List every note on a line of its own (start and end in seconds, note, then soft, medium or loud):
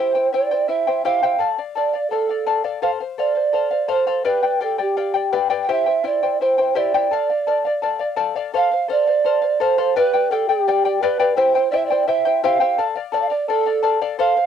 0.00 0.15 E4 medium
0.00 0.16 G4 medium
0.00 0.14 C5 medium
0.00 0.31 C5 medium
0.00 0.16 E5 medium
0.00 0.13 G5 medium
0.15 0.32 E4 soft
0.15 0.33 C5 soft
0.15 0.33 G5 soft
0.33 0.52 E4 soft
0.33 0.51 C5 medium
0.33 0.70 D5 medium
0.33 0.51 E5 soft
0.33 0.50 G5 medium
0.51 0.67 E4 soft
0.51 0.68 C5 soft
0.51 0.68 G5 soft
0.68 0.87 E4 medium
0.68 0.86 C5 soft
0.68 0.87 E5 soft
0.68 1.06 E5 medium
0.68 0.86 G5 medium
0.87 1.04 E4 soft
0.87 1.04 C5 soft
0.87 1.04 G5 soft
1.04 1.22 E4 medium
1.04 1.22 G4 medium
1.04 1.21 C5 medium
1.04 1.22 E5 medium
1.04 1.49 F5 medium
1.04 1.22 G5 medium
1.23 1.38 E4 soft
1.23 1.41 G4 soft
1.23 1.39 C5 medium
1.23 1.40 E5 soft
1.23 1.41 G5 medium
1.39 1.58 A4 medium
1.39 1.58 D5 medium
1.39 1.57 F5 medium
1.58 1.76 D5 soft
1.58 1.76 F5 soft
1.75 1.94 A4 soft
1.75 2.09 D5 medium
1.75 1.94 D5 medium
1.75 1.92 F5 soft
1.93 2.11 D5 soft
1.93 2.11 F5 soft
2.10 2.61 A4 medium
2.10 2.30 A4 soft
2.10 2.29 D5 medium
2.10 2.28 F5 medium
2.29 2.45 D5 soft
2.29 2.46 F5 soft
2.47 2.63 A4 medium
2.47 2.63 D5 medium
2.47 2.63 F5 medium
2.64 2.81 A4 soft
2.64 2.82 D5 soft
2.64 2.82 F5 medium
2.82 3.01 A4 medium
2.82 3.00 C5 medium
2.82 2.90 F5 medium
2.82 2.99 F5 medium
3.00 3.17 C5 soft
3.00 3.18 F5 soft
3.18 3.37 A4 soft
3.18 3.35 C5 soft
3.18 3.92 D5 medium
3.18 3.34 F5 medium
3.35 3.52 C5 soft
3.35 3.53 F5 soft
3.53 3.72 A4 medium
3.53 3.70 C5 medium
3.53 3.70 F5 medium
3.71 3.87 C5 soft
3.71 3.88 F5 soft
3.88 4.06 A4 medium
3.88 4.06 C5 medium
3.88 4.27 C5 medium
3.88 4.06 F5 medium
4.07 4.25 A4 medium
4.07 4.24 C5 medium
4.07 4.23 F5 soft
4.25 4.43 G4 medium
4.25 4.44 B4 medium
4.25 4.62 B4 medium
4.25 4.42 D5 medium
4.25 4.43 F5 medium
4.25 4.41 G5 medium
4.43 4.60 G4 soft
4.43 4.61 D5 soft
4.43 4.61 G5 soft
4.60 4.78 G4 medium
4.60 4.82 A4 medium
4.60 4.78 D5 medium
4.60 4.79 F5 medium
4.60 4.77 G5 medium
4.78 4.96 G4 soft
4.78 5.34 G4 medium
4.78 4.96 D5 soft
4.78 4.97 G5 soft
4.97 5.15 G4 soft
4.97 5.14 D5 medium
4.97 5.15 F5 medium
4.97 5.13 G5 medium
5.14 5.31 G4 soft
5.14 5.32 D5 soft
5.14 5.32 G5 soft
5.32 5.49 G4 medium
5.32 5.50 B4 medium
5.32 5.49 D5 medium
5.32 5.49 F5 medium
5.32 5.49 G5 medium
5.50 5.67 G4 medium
5.50 5.68 B4 soft
5.50 5.68 D5 medium
5.50 5.68 F5 soft
5.50 5.68 G5 medium
5.63 5.73 G5 medium
5.69 5.87 E4 medium
5.69 5.87 G4 medium
5.69 5.86 C5 medium
5.69 5.87 E5 medium
5.69 6.08 E5 loud
5.69 5.85 G5 medium
5.86 6.03 E4 soft
5.86 6.03 C5 soft
5.86 6.04 G5 soft
6.04 6.22 E4 soft
6.04 6.22 C5 medium
6.04 6.40 D5 medium
6.04 6.22 E5 medium
6.04 6.22 G5 medium
6.23 6.40 E4 soft
6.23 6.41 C5 soft
6.23 6.40 G5 soft
6.41 6.58 E4 medium
6.41 6.77 C5 medium
6.41 6.58 C5 medium
6.41 6.58 E5 soft
6.41 6.57 G5 medium
6.58 6.75 E4 soft
6.58 6.75 C5 soft
6.58 6.75 G5 soft
6.75 6.93 E4 medium
6.75 6.93 G4 medium
6.75 6.93 C5 medium
6.75 8.18 D5 medium
6.75 6.93 E5 medium
6.75 6.93 G5 medium
6.94 7.11 E4 soft
6.94 7.12 G4 medium
6.94 7.12 C5 medium
6.94 7.12 E5 soft
6.94 7.12 G5 medium
7.11 7.29 A4 medium
7.11 7.30 D5 medium
7.11 7.29 F5 medium
7.30 7.47 D5 soft
7.30 7.47 F5 soft
7.47 7.65 A4 medium
7.47 7.65 D5 medium
7.47 7.64 F5 medium
7.65 7.82 D5 soft
7.65 7.82 F5 soft
7.82 8.00 A4 medium
7.82 7.99 D5 medium
7.82 7.98 F5 medium
7.99 8.16 D5 soft
7.99 8.16 F5 soft
8.17 8.35 A4 medium
8.17 8.35 D5 medium
8.17 8.34 F5 medium
8.36 8.52 A4 soft
8.36 8.53 D5 medium
8.36 8.53 F5 medium
8.54 8.71 A4 medium
8.54 8.71 C5 medium
8.54 8.70 F5 medium
8.54 8.88 F5 loud
8.72 8.88 C5 soft
8.72 8.89 F5 soft
8.88 9.06 A4 soft
8.88 9.07 C5 medium
8.88 9.63 D5 loud
8.88 9.06 F5 medium
9.07 9.25 C5 soft
9.07 9.24 F5 soft
9.25 9.42 A4 soft
9.25 9.42 C5 medium
9.25 9.41 F5 medium
9.42 9.60 C5 soft
9.42 9.60 F5 soft
9.60 9.78 A4 medium
9.60 9.77 C5 medium
9.60 9.98 C5 medium
9.60 9.77 F5 medium
9.78 9.96 A4 medium
9.78 9.96 C5 medium
9.78 9.95 F5 medium
9.96 10.13 G4 medium
9.96 10.13 B4 medium
9.96 10.33 B4 loud
9.96 10.13 D5 medium
9.96 10.13 F5 medium
9.96 10.12 G5 medium
10.13 10.31 G4 soft
10.13 10.31 D5 soft
10.13 10.31 G5 soft
10.31 10.49 G4 soft
10.31 10.50 A4 medium
10.31 10.48 D5 medium
10.31 10.48 F5 medium
10.31 10.48 G5 medium
10.48 11.03 G4 medium
10.48 10.67 G4 soft
10.48 10.66 D5 soft
10.48 10.66 G5 soft
10.67 10.85 G4 medium
10.67 10.84 D5 medium
10.67 10.84 F5 medium
10.67 10.84 G5 medium
10.85 11.01 G4 soft
10.85 11.02 D5 soft
10.85 11.02 G5 soft
11.01 11.19 G4 medium
11.01 11.35 B4 medium
11.01 11.19 B4 medium
11.01 11.18 D5 medium
11.01 11.19 F5 medium
11.01 11.18 G5 medium
11.19 11.35 G4 medium
11.19 11.36 B4 medium
11.19 11.37 D5 medium
11.19 11.37 F5 medium
11.19 11.37 G5 medium
11.35 11.55 E4 medium
11.35 11.54 G4 medium
11.35 11.69 C5 medium
11.35 11.55 C5 medium
11.35 11.55 E5 medium
11.35 11.54 G5 medium
11.55 11.72 E4 soft
11.55 11.72 C5 soft
11.55 11.72 G5 soft
11.71 11.90 E4 medium
11.71 11.90 C5 soft
11.71 11.77 D5 medium
11.71 11.90 E5 medium
11.71 11.89 G5 medium
11.77 11.87 E5 medium
11.86 12.07 D5 medium
11.90 12.06 E4 soft
11.90 12.07 C5 soft
11.90 12.07 G5 soft
12.07 12.25 E4 medium
12.07 12.25 C5 medium
12.07 12.40 E5 medium
12.07 12.25 E5 medium
12.07 12.24 G5 medium
12.25 12.43 E4 soft
12.25 12.43 C5 soft
12.25 12.43 G5 medium
12.43 12.59 E4 medium
12.43 12.60 G4 medium
12.43 12.60 C5 medium
12.43 12.60 E5 medium
12.43 12.84 F5 medium
12.43 12.59 G5 medium
12.60 12.78 E4 medium
12.60 12.78 G4 medium
12.60 12.78 C5 medium
12.60 12.78 E5 soft
12.60 12.78 G5 medium
12.78 12.96 A4 medium
12.78 12.96 D5 medium
12.78 12.94 F5 medium
12.95 13.12 D5 soft
12.95 13.13 F5 soft
13.12 13.31 A4 soft
13.12 13.19 D5 medium
13.12 13.30 D5 medium
13.12 13.29 F5 medium
13.21 13.30 F5 medium
13.28 13.48 D5 medium
13.28 13.49 D5 soft
13.28 13.48 F5 soft
13.48 13.66 A4 soft
13.48 13.98 A4 medium
13.48 13.66 D5 medium
13.48 13.65 F5 medium
13.66 13.82 D5 soft
13.66 13.83 F5 soft
13.83 14.01 A4 medium
13.83 14.01 D5 medium
13.83 14.01 F5 medium
14.02 14.18 A4 medium
14.02 14.18 D5 medium
14.02 14.19 F5 medium
14.19 14.37 A4 medium
14.19 14.36 C5 medium
14.19 14.46 F5 medium
14.19 14.35 F5 medium
14.37 14.46 C5 soft
14.37 14.46 F5 soft